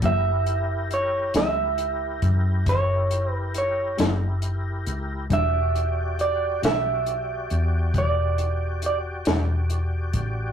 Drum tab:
HH |xxxxxxxxxxxx|xxxxxxxxxxxx|
SD |---o--o--o--|---o-----o--|
BD |o----oo-----|o-----o----o|